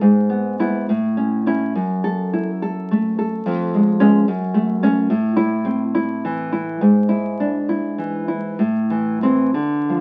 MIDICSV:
0, 0, Header, 1, 2, 480
1, 0, Start_track
1, 0, Time_signature, 6, 3, 24, 8
1, 0, Tempo, 580271
1, 2396, Tempo, 551978
1, 4316, Tempo, 571973
1, 6236, Tempo, 596421
1, 7196, Tempo, 630915
1, 7676, Tempo, 680272
1, 8233, End_track
2, 0, Start_track
2, 0, Title_t, "Nylon-string guitar"
2, 0, Program_c, 0, 24
2, 10, Note_on_c, 0, 44, 76
2, 245, Note_on_c, 0, 59, 66
2, 483, Note_off_c, 0, 59, 0
2, 492, Note_on_c, 0, 59, 66
2, 496, Note_on_c, 0, 64, 92
2, 705, Note_off_c, 0, 59, 0
2, 707, Note_off_c, 0, 64, 0
2, 709, Note_off_c, 0, 44, 0
2, 737, Note_on_c, 0, 45, 78
2, 968, Note_on_c, 0, 61, 66
2, 1203, Note_off_c, 0, 61, 0
2, 1211, Note_on_c, 0, 61, 65
2, 1217, Note_on_c, 0, 64, 94
2, 1425, Note_off_c, 0, 61, 0
2, 1427, Note_off_c, 0, 64, 0
2, 1430, Note_off_c, 0, 45, 0
2, 1451, Note_on_c, 0, 42, 82
2, 1687, Note_on_c, 0, 69, 97
2, 1931, Note_on_c, 0, 64, 72
2, 2069, Note_off_c, 0, 69, 0
2, 2170, Note_on_c, 0, 69, 70
2, 2411, Note_on_c, 0, 57, 70
2, 2637, Note_off_c, 0, 69, 0
2, 2641, Note_off_c, 0, 64, 0
2, 2648, Note_on_c, 0, 69, 71
2, 2843, Note_off_c, 0, 42, 0
2, 2880, Note_off_c, 0, 69, 0
2, 2882, Note_off_c, 0, 57, 0
2, 2885, Note_on_c, 0, 41, 88
2, 3132, Note_on_c, 0, 56, 72
2, 3345, Note_off_c, 0, 56, 0
2, 3355, Note_on_c, 0, 56, 69
2, 3357, Note_on_c, 0, 61, 97
2, 3569, Note_off_c, 0, 56, 0
2, 3569, Note_off_c, 0, 61, 0
2, 3574, Note_off_c, 0, 41, 0
2, 3599, Note_on_c, 0, 42, 91
2, 3828, Note_on_c, 0, 57, 78
2, 4064, Note_off_c, 0, 57, 0
2, 4074, Note_on_c, 0, 57, 68
2, 4078, Note_on_c, 0, 61, 100
2, 4291, Note_off_c, 0, 57, 0
2, 4294, Note_off_c, 0, 61, 0
2, 4298, Note_off_c, 0, 42, 0
2, 4312, Note_on_c, 0, 45, 90
2, 4535, Note_on_c, 0, 64, 102
2, 4771, Note_on_c, 0, 60, 78
2, 4924, Note_off_c, 0, 64, 0
2, 5023, Note_on_c, 0, 64, 77
2, 5275, Note_on_c, 0, 52, 76
2, 5498, Note_off_c, 0, 64, 0
2, 5504, Note_off_c, 0, 60, 0
2, 5508, Note_on_c, 0, 64, 69
2, 5714, Note_off_c, 0, 45, 0
2, 5748, Note_off_c, 0, 64, 0
2, 5750, Note_on_c, 0, 44, 82
2, 5752, Note_off_c, 0, 52, 0
2, 5981, Note_on_c, 0, 64, 93
2, 6243, Note_on_c, 0, 62, 71
2, 6374, Note_off_c, 0, 64, 0
2, 6476, Note_on_c, 0, 64, 74
2, 6712, Note_on_c, 0, 52, 64
2, 6941, Note_off_c, 0, 64, 0
2, 6951, Note_on_c, 0, 64, 65
2, 6955, Note_off_c, 0, 62, 0
2, 7163, Note_off_c, 0, 44, 0
2, 7196, Note_off_c, 0, 64, 0
2, 7197, Note_off_c, 0, 52, 0
2, 7199, Note_on_c, 0, 45, 76
2, 7438, Note_on_c, 0, 52, 64
2, 7674, Note_off_c, 0, 52, 0
2, 7682, Note_on_c, 0, 52, 56
2, 7686, Note_on_c, 0, 60, 83
2, 7891, Note_off_c, 0, 52, 0
2, 7892, Note_off_c, 0, 60, 0
2, 7893, Note_off_c, 0, 45, 0
2, 7906, Note_on_c, 0, 50, 74
2, 8153, Note_on_c, 0, 53, 58
2, 8233, Note_off_c, 0, 50, 0
2, 8233, Note_off_c, 0, 53, 0
2, 8233, End_track
0, 0, End_of_file